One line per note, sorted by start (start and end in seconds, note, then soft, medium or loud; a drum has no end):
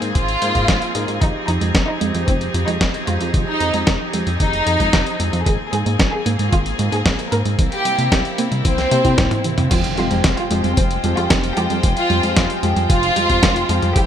0.00 0.13 G#2 medium
0.00 1.17 A#3 medium
0.00 9.67 C4 medium
0.00 5.42 G#4 medium
0.00 closed hi-hat soft
0.15 0.37 G#1 medium
0.15 1.11 F4 loud
0.15 kick loud
0.15 closed hi-hat medium
0.28 closed hi-hat soft
0.42 0.53 G#2 loud
0.42 0.52 A#3 medium
0.42 0.52 D#4 medium
0.42 0.52 G#4 medium
0.42 0.52 C5 medium
0.42 closed hi-hat medium
0.55 0.66 G#2 medium
0.55 0.72 A#3 medium
0.55 0.72 D#4 medium
0.55 0.72 G#4 medium
0.55 0.72 C5 medium
0.55 kick medium
0.55 closed hi-hat medium
0.68 0.79 G#1 medium
0.68 kick loud
0.68 snare loud
0.68 closed hi-hat medium
0.82 closed hi-hat soft
0.95 1.06 G#2 medium
0.95 1.12 A#3 medium
0.95 1.12 D#4 medium
0.95 1.12 G#4 medium
0.95 1.12 A#4 medium
0.95 closed hi-hat medium
1.08 1.19 G#2 medium
1.08 closed hi-hat soft
1.21 1.32 F1 loud
1.21 1.31 D#3 medium
1.21 5.42 F3 medium
1.21 1.43 D#4 medium
1.21 5.42 D#4 medium
1.21 5.42 G4 medium
1.21 kick loud
1.21 closed hi-hat medium
1.48 1.59 F2 medium
1.48 1.58 F3 medium
1.48 1.80 D#4 medium
1.48 closed hi-hat medium
1.61 1.72 F2 loud
1.61 1.67 G#3 medium
1.61 closed hi-hat medium
1.75 1.85 F1 medium
1.75 1.87 C4 medium
1.75 kick loud
1.75 snare loud
1.75 closed hi-hat medium
1.88 2.20 D#4 medium
2.01 2.12 F2 medium
2.01 2.14 G#3 loud
2.01 closed hi-hat medium
2.14 2.25 F2 medium
2.14 2.27 F3 medium
2.14 closed hi-hat soft
2.28 2.49 F1 medium
2.28 2.37 D#3 medium
2.28 2.60 C4 medium
2.28 kick loud
2.28 closed hi-hat medium
2.41 closed hi-hat soft
2.54 2.65 F2 loud
2.54 2.64 F3 medium
2.54 closed hi-hat medium
2.67 2.78 F2 medium
2.67 2.73 G#3 medium
2.67 2.99 D#4 medium
2.67 closed hi-hat soft
2.81 2.92 F1 medium
2.81 2.93 C4 loud
2.81 kick loud
2.81 snare loud
2.81 closed hi-hat medium
2.94 closed hi-hat soft
3.07 3.18 F2 loud
3.07 3.17 G#3 medium
3.07 3.39 F4 medium
3.07 closed hi-hat medium
3.21 3.31 F2 loud
3.21 3.33 F3 loud
3.21 closed hi-hat soft
3.34 3.45 F1 loud
3.34 3.44 D#3 medium
3.34 kick loud
3.34 closed hi-hat medium
3.47 3.90 D#4 medium
3.60 3.71 F2 medium
3.60 3.70 F3 medium
3.60 closed hi-hat medium
3.74 3.84 F2 loud
3.74 3.80 G#3 medium
3.74 closed hi-hat soft
3.87 3.98 F1 medium
3.87 4.00 C4 medium
3.87 kick loud
3.87 snare loud
3.87 closed hi-hat medium
4.13 4.24 F2 medium
4.13 4.26 G#3 loud
4.13 closed hi-hat medium
4.27 4.38 F2 medium
4.27 4.39 F3 loud
4.27 closed hi-hat soft
4.40 4.62 F1 medium
4.40 4.50 D#3 medium
4.40 5.36 D#4 loud
4.40 kick loud
4.40 closed hi-hat medium
4.53 closed hi-hat soft
4.67 4.77 F2 loud
4.67 4.76 F3 medium
4.67 closed hi-hat medium
4.80 4.91 F2 medium
4.80 4.86 G#3 medium
4.80 kick medium
4.80 closed hi-hat medium
4.93 5.04 F1 medium
4.93 5.06 C4 loud
4.93 kick loud
4.93 snare loud
4.93 closed hi-hat medium
5.07 closed hi-hat soft
5.20 5.30 F2 medium
5.20 5.29 G#3 medium
5.20 closed hi-hat medium
5.33 5.44 F2 loud
5.33 5.46 F3 loud
5.33 closed hi-hat soft
5.46 5.57 G#1 loud
5.46 5.56 D#3 medium
5.46 7.56 A#3 medium
5.46 7.56 G#4 medium
5.46 5.68 G#4 loud
5.46 kick loud
5.46 closed hi-hat medium
5.73 5.84 G#2 medium
5.73 5.83 G#3 medium
5.73 6.05 G#4 medium
5.73 closed hi-hat medium
5.86 5.97 G#2 loud
5.86 5.92 A#3 medium
5.86 closed hi-hat soft
5.99 6.10 G#1 medium
5.99 6.12 C4 medium
5.99 kick loud
5.99 snare loud
5.99 closed hi-hat medium
6.13 6.44 G#4 medium
6.26 6.37 G#2 medium
6.26 6.39 A#3 loud
6.26 closed hi-hat medium
6.39 6.50 G#2 medium
6.39 6.52 G#3 loud
6.39 closed hi-hat soft
6.52 6.74 G#1 medium
6.52 6.62 D#3 medium
6.52 6.84 F4 loud
6.52 kick loud
6.52 closed hi-hat medium
6.66 closed hi-hat soft
6.79 6.90 G#2 loud
6.79 6.89 G#3 medium
6.79 closed hi-hat medium
6.92 7.03 G#2 medium
6.92 6.98 A#3 medium
6.92 7.24 G#4 loud
6.92 closed hi-hat medium
7.05 7.16 G#1 medium
7.05 7.18 C4 loud
7.05 kick loud
7.05 snare loud
7.05 closed hi-hat medium
7.19 closed hi-hat soft
7.32 7.43 G#2 loud
7.32 7.42 A#3 medium
7.32 7.64 A#4 medium
7.32 closed hi-hat medium
7.45 7.56 G#2 loud
7.45 7.58 G#3 loud
7.45 closed hi-hat soft
7.59 7.69 C2 loud
7.59 7.68 E3 medium
7.59 9.69 A#3 medium
7.59 9.69 E4 medium
7.59 kick loud
7.59 closed hi-hat medium
7.72 8.14 G4 loud
7.72 closed hi-hat soft
7.85 7.96 C3 medium
7.85 7.95 G3 medium
7.85 closed hi-hat medium
7.98 8.09 C3 loud
7.98 8.04 A#3 medium
7.98 closed hi-hat medium
8.12 8.23 C2 medium
8.12 8.24 C4 medium
8.12 kick loud
8.12 snare loud
8.12 closed hi-hat medium
8.25 closed hi-hat soft
8.38 8.49 C3 medium
8.38 8.51 A#3 loud
8.38 closed hi-hat medium
8.51 8.62 C3 medium
8.51 8.64 G3 loud
8.51 closed hi-hat medium
8.65 8.86 C2 medium
8.65 8.74 E3 medium
8.65 9.60 C4 loud
8.65 kick loud
8.65 closed hi-hat medium
8.78 snare soft
8.78 closed hi-hat soft
8.91 9.02 C3 loud
8.91 9.01 A#3 loud
8.91 closed hi-hat medium
8.91 high tom medium
9.05 9.15 C3 medium
9.05 9.17 E4 loud
9.05 kick medium
9.05 closed hi-hat medium
9.18 9.29 C2 loud
9.18 9.30 E4 medium
9.18 kick loud
9.18 snare loud
9.18 closed hi-hat medium
9.18 mid tom medium
9.31 9.41 E4 medium
9.31 closed hi-hat soft
9.31 mid tom medium
9.44 9.55 C3 medium
9.44 9.57 E3 loud
9.44 closed hi-hat medium
9.58 9.69 C3 loud
9.58 9.70 C4 medium
9.58 closed hi-hat medium
9.58 mid tom medium
9.71 9.82 F1 loud
9.71 9.81 F3 medium
9.71 13.92 G#3 medium
9.71 9.92 F4 medium
9.71 13.92 F4 medium
9.71 14.06 C5 medium
9.71 13.92 G5 medium
9.71 kick loud
9.71 closed hi-hat medium
9.71 crash loud
9.71 impact medium
9.84 closed hi-hat soft
9.97 10.08 F2 medium
9.97 10.47 F3 medium
9.97 10.07 G3 medium
9.97 10.47 G#3 medium
9.97 10.47 C4 medium
9.97 10.29 F4 medium
9.97 10.47 G4 medium
9.97 closed hi-hat soft
10.11 10.22 F2 loud
10.11 10.17 G#3 medium
10.11 closed hi-hat soft
10.24 10.35 F1 medium
10.24 10.37 C4 medium
10.24 kick loud
10.24 snare loud
10.24 closed hi-hat loud
10.37 10.69 F4 medium
10.37 closed hi-hat soft
10.51 10.62 F2 loud
10.51 10.68 F3 medium
10.51 10.68 G#3 medium
10.51 10.63 G#3 loud
10.51 10.68 C4 medium
10.51 10.68 G4 loud
10.51 closed hi-hat medium
10.64 10.75 F2 medium
10.64 10.77 G3 loud
10.64 closed hi-hat soft
10.77 10.99 F1 medium
10.77 10.87 F3 medium
10.77 11.09 C4 loud
10.77 kick loud
10.77 closed hi-hat loud
10.91 closed hi-hat soft
11.04 11.15 F2 loud
11.04 11.14 F3 medium
11.04 11.14 G3 medium
11.04 11.14 G#3 medium
11.04 11.14 C4 medium
11.04 11.14 G4 medium
11.04 closed hi-hat medium
11.17 11.28 F2 medium
11.17 11.34 F3 medium
11.17 11.34 G#3 medium
11.17 11.23 G#3 medium
11.17 11.34 C4 medium
11.17 11.49 F4 loud
11.17 11.34 G4 medium
11.17 closed hi-hat soft
11.30 11.52 F1 loud
11.30 11.43 C4 loud
11.30 kick loud
11.30 snare loud
11.30 closed hi-hat loud
11.44 closed hi-hat soft
11.57 11.68 F2 medium
11.57 11.74 F3 medium
11.57 11.74 G#3 medium
11.57 11.67 G#3 medium
11.57 11.74 C4 medium
11.57 11.74 F4 loud
11.57 11.89 G4 medium
11.57 closed hi-hat medium
11.70 11.81 F2 loud
11.70 11.83 G3 loud
11.70 closed hi-hat soft
11.83 11.94 F1 loud
11.83 11.93 F3 medium
11.83 kick loud
11.83 closed hi-hat medium
11.97 12.39 F4 loud
11.97 closed hi-hat soft
12.10 12.21 F2 medium
12.10 12.60 F3 medium
12.10 12.20 G3 medium
12.10 12.60 G#3 medium
12.10 12.60 C4 medium
12.10 12.60 G4 medium
12.10 closed hi-hat soft
12.23 12.34 F2 loud
12.23 12.29 G#3 medium
12.23 closed hi-hat soft
12.37 12.47 F1 medium
12.37 12.49 C4 medium
12.37 kick loud
12.37 snare loud
12.37 closed hi-hat loud
12.50 closed hi-hat soft
12.63 12.74 F2 loud
12.63 12.80 F3 medium
12.63 12.80 G#3 medium
12.63 12.76 G#3 loud
12.63 12.80 C4 medium
12.63 12.80 G4 loud
12.63 closed hi-hat medium
12.76 12.87 F2 medium
12.76 12.89 G3 loud
12.76 closed hi-hat soft
12.90 13.11 F1 medium
12.90 12.99 F3 medium
12.90 13.85 F4 loud
12.90 kick loud
12.90 closed hi-hat loud
13.03 closed hi-hat soft
13.16 13.27 F2 loud
13.16 13.26 F3 medium
13.16 13.26 G3 medium
13.16 13.26 G#3 medium
13.16 13.26 C4 medium
13.16 13.26 G4 medium
13.16 closed hi-hat medium
13.29 13.40 F2 medium
13.29 13.47 F3 medium
13.29 13.47 G#3 medium
13.29 13.35 G#3 medium
13.29 13.47 C4 medium
13.29 13.47 G4 medium
13.29 kick medium
13.29 closed hi-hat soft
13.43 13.64 F1 loud
13.43 13.55 C4 loud
13.43 kick loud
13.43 snare loud
13.43 closed hi-hat loud
13.56 closed hi-hat soft
13.69 13.80 F2 loud
13.69 13.86 F3 medium
13.69 13.86 G#3 medium
13.69 13.79 G#3 medium
13.69 13.86 C4 medium
13.69 13.86 F4 loud
13.69 closed hi-hat medium
13.82 13.93 F2 loud
13.82 13.95 G3 loud
13.82 closed hi-hat soft
13.96 14.06 C2 loud
13.96 14.06 E3 medium
13.96 14.06 E4 medium
13.96 14.06 G4 medium
13.96 14.06 G4 loud
13.96 14.06 G5 medium
13.96 kick loud
13.96 closed hi-hat medium